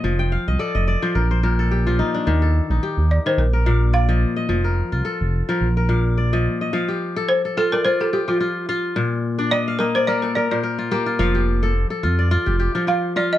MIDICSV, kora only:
0, 0, Header, 1, 2, 480
1, 0, Start_track
1, 0, Tempo, 558140
1, 31, Time_signature, 4, 2, 24, 8
1, 11509, End_track
2, 0, Start_track
2, 0, Title_t, "Kora"
2, 0, Program_c, 0, 46
2, 0, Note_on_c, 0, 70, 51
2, 0, Note_on_c, 0, 75, 57
2, 0, Note_on_c, 0, 77, 68
2, 34, Note_on_c, 0, 53, 77
2, 165, Note_on_c, 0, 79, 69
2, 171, Note_off_c, 0, 77, 0
2, 275, Note_on_c, 0, 77, 70
2, 300, Note_off_c, 0, 70, 0
2, 407, Note_off_c, 0, 75, 0
2, 411, Note_on_c, 0, 75, 67
2, 510, Note_on_c, 0, 69, 73
2, 512, Note_on_c, 0, 74, 66
2, 640, Note_off_c, 0, 75, 0
2, 643, Note_on_c, 0, 75, 67
2, 750, Note_off_c, 0, 74, 0
2, 754, Note_on_c, 0, 74, 68
2, 871, Note_off_c, 0, 53, 0
2, 880, Note_on_c, 0, 53, 77
2, 883, Note_on_c, 0, 72, 65
2, 966, Note_off_c, 0, 79, 0
2, 990, Note_on_c, 0, 70, 68
2, 1032, Note_off_c, 0, 53, 0
2, 1042, Note_off_c, 0, 69, 0
2, 1122, Note_off_c, 0, 72, 0
2, 1126, Note_on_c, 0, 72, 65
2, 1133, Note_off_c, 0, 77, 0
2, 1230, Note_off_c, 0, 70, 0
2, 1233, Note_on_c, 0, 46, 74
2, 1233, Note_on_c, 0, 70, 69
2, 1368, Note_on_c, 0, 69, 63
2, 1473, Note_on_c, 0, 67, 62
2, 1564, Note_off_c, 0, 75, 0
2, 1605, Note_on_c, 0, 53, 66
2, 1605, Note_on_c, 0, 65, 65
2, 1707, Note_off_c, 0, 74, 0
2, 1711, Note_on_c, 0, 63, 74
2, 1844, Note_on_c, 0, 62, 66
2, 1951, Note_on_c, 0, 51, 81
2, 1990, Note_off_c, 0, 46, 0
2, 1990, Note_off_c, 0, 53, 0
2, 2077, Note_off_c, 0, 69, 0
2, 2081, Note_on_c, 0, 69, 59
2, 2132, Note_off_c, 0, 70, 0
2, 2147, Note_off_c, 0, 72, 0
2, 2324, Note_off_c, 0, 63, 0
2, 2327, Note_on_c, 0, 63, 55
2, 2379, Note_off_c, 0, 62, 0
2, 2429, Note_off_c, 0, 67, 0
2, 2433, Note_on_c, 0, 67, 71
2, 2793, Note_off_c, 0, 51, 0
2, 2803, Note_on_c, 0, 51, 76
2, 2906, Note_off_c, 0, 65, 0
2, 2949, Note_off_c, 0, 51, 0
2, 3039, Note_on_c, 0, 70, 61
2, 3090, Note_off_c, 0, 69, 0
2, 3148, Note_on_c, 0, 77, 61
2, 3150, Note_on_c, 0, 46, 81
2, 3381, Note_on_c, 0, 74, 54
2, 3433, Note_off_c, 0, 63, 0
2, 3514, Note_on_c, 0, 53, 71
2, 3514, Note_on_c, 0, 75, 58
2, 3647, Note_off_c, 0, 67, 0
2, 3750, Note_off_c, 0, 75, 0
2, 3753, Note_on_c, 0, 75, 66
2, 3805, Note_off_c, 0, 74, 0
2, 3850, Note_off_c, 0, 53, 0
2, 3861, Note_on_c, 0, 53, 79
2, 3909, Note_off_c, 0, 46, 0
2, 3990, Note_off_c, 0, 70, 0
2, 3994, Note_on_c, 0, 70, 55
2, 4007, Note_off_c, 0, 77, 0
2, 4233, Note_on_c, 0, 65, 60
2, 4341, Note_on_c, 0, 69, 72
2, 4393, Note_off_c, 0, 70, 0
2, 4674, Note_off_c, 0, 75, 0
2, 4709, Note_off_c, 0, 53, 0
2, 4719, Note_on_c, 0, 53, 82
2, 4721, Note_on_c, 0, 70, 65
2, 4773, Note_off_c, 0, 69, 0
2, 4868, Note_off_c, 0, 53, 0
2, 4957, Note_off_c, 0, 70, 0
2, 4961, Note_on_c, 0, 70, 55
2, 5064, Note_on_c, 0, 46, 72
2, 5066, Note_on_c, 0, 77, 59
2, 5311, Note_on_c, 0, 74, 58
2, 5442, Note_on_c, 0, 75, 57
2, 5444, Note_on_c, 0, 53, 68
2, 5535, Note_off_c, 0, 65, 0
2, 5683, Note_off_c, 0, 75, 0
2, 5686, Note_on_c, 0, 75, 55
2, 5738, Note_off_c, 0, 74, 0
2, 5778, Note_off_c, 0, 53, 0
2, 5787, Note_off_c, 0, 77, 0
2, 5788, Note_on_c, 0, 53, 81
2, 5790, Note_on_c, 0, 77, 73
2, 5828, Note_off_c, 0, 46, 0
2, 5920, Note_on_c, 0, 67, 61
2, 6056, Note_off_c, 0, 70, 0
2, 6161, Note_on_c, 0, 69, 85
2, 6403, Note_off_c, 0, 69, 0
2, 6407, Note_on_c, 0, 69, 62
2, 6512, Note_on_c, 0, 65, 84
2, 6607, Note_off_c, 0, 75, 0
2, 6646, Note_on_c, 0, 74, 71
2, 6649, Note_off_c, 0, 77, 0
2, 6749, Note_off_c, 0, 65, 0
2, 6752, Note_on_c, 0, 65, 80
2, 6880, Note_off_c, 0, 67, 0
2, 6884, Note_on_c, 0, 67, 57
2, 6988, Note_off_c, 0, 67, 0
2, 6992, Note_on_c, 0, 67, 68
2, 7109, Note_off_c, 0, 53, 0
2, 7114, Note_off_c, 0, 65, 0
2, 7118, Note_on_c, 0, 65, 60
2, 7119, Note_on_c, 0, 53, 65
2, 7225, Note_off_c, 0, 65, 0
2, 7228, Note_on_c, 0, 65, 72
2, 7468, Note_off_c, 0, 65, 0
2, 7471, Note_on_c, 0, 65, 90
2, 7473, Note_on_c, 0, 77, 73
2, 7540, Note_off_c, 0, 69, 0
2, 7599, Note_off_c, 0, 74, 0
2, 7706, Note_on_c, 0, 46, 90
2, 7748, Note_off_c, 0, 53, 0
2, 8071, Note_on_c, 0, 62, 79
2, 8074, Note_on_c, 0, 74, 65
2, 8186, Note_on_c, 0, 75, 73
2, 8206, Note_off_c, 0, 67, 0
2, 8319, Note_off_c, 0, 77, 0
2, 8322, Note_on_c, 0, 77, 71
2, 8424, Note_off_c, 0, 75, 0
2, 8424, Note_on_c, 0, 58, 78
2, 8428, Note_on_c, 0, 75, 65
2, 8479, Note_off_c, 0, 62, 0
2, 8479, Note_off_c, 0, 74, 0
2, 8562, Note_on_c, 0, 74, 79
2, 8665, Note_off_c, 0, 58, 0
2, 8668, Note_on_c, 0, 58, 86
2, 8672, Note_on_c, 0, 70, 75
2, 8773, Note_off_c, 0, 65, 0
2, 8797, Note_on_c, 0, 69, 63
2, 8909, Note_off_c, 0, 70, 0
2, 8912, Note_on_c, 0, 70, 79
2, 9031, Note_off_c, 0, 46, 0
2, 9039, Note_on_c, 0, 72, 63
2, 9041, Note_on_c, 0, 46, 70
2, 9092, Note_off_c, 0, 69, 0
2, 9142, Note_off_c, 0, 70, 0
2, 9145, Note_on_c, 0, 70, 65
2, 9181, Note_off_c, 0, 77, 0
2, 9275, Note_on_c, 0, 65, 67
2, 9348, Note_off_c, 0, 75, 0
2, 9383, Note_off_c, 0, 58, 0
2, 9386, Note_on_c, 0, 67, 82
2, 9387, Note_on_c, 0, 58, 83
2, 9510, Note_off_c, 0, 65, 0
2, 9514, Note_on_c, 0, 65, 74
2, 9515, Note_off_c, 0, 74, 0
2, 9624, Note_on_c, 0, 53, 91
2, 9625, Note_on_c, 0, 77, 73
2, 9670, Note_off_c, 0, 46, 0
2, 9754, Note_off_c, 0, 67, 0
2, 9758, Note_on_c, 0, 67, 65
2, 9999, Note_on_c, 0, 69, 78
2, 10051, Note_off_c, 0, 58, 0
2, 10051, Note_off_c, 0, 70, 0
2, 10061, Note_off_c, 0, 72, 0
2, 10233, Note_off_c, 0, 69, 0
2, 10237, Note_on_c, 0, 69, 68
2, 10344, Note_off_c, 0, 65, 0
2, 10348, Note_on_c, 0, 65, 80
2, 10481, Note_on_c, 0, 74, 64
2, 10484, Note_off_c, 0, 77, 0
2, 10584, Note_off_c, 0, 65, 0
2, 10587, Note_on_c, 0, 65, 93
2, 10714, Note_off_c, 0, 67, 0
2, 10717, Note_on_c, 0, 67, 63
2, 10828, Note_off_c, 0, 67, 0
2, 10832, Note_on_c, 0, 67, 68
2, 10954, Note_off_c, 0, 53, 0
2, 10960, Note_off_c, 0, 65, 0
2, 10964, Note_on_c, 0, 53, 72
2, 10964, Note_on_c, 0, 65, 58
2, 11067, Note_off_c, 0, 65, 0
2, 11070, Note_on_c, 0, 65, 68
2, 11314, Note_off_c, 0, 65, 0
2, 11318, Note_on_c, 0, 65, 85
2, 11321, Note_on_c, 0, 77, 77
2, 11370, Note_off_c, 0, 69, 0
2, 11434, Note_off_c, 0, 74, 0
2, 11509, Note_off_c, 0, 53, 0
2, 11509, Note_off_c, 0, 65, 0
2, 11509, Note_off_c, 0, 67, 0
2, 11509, Note_off_c, 0, 77, 0
2, 11509, End_track
0, 0, End_of_file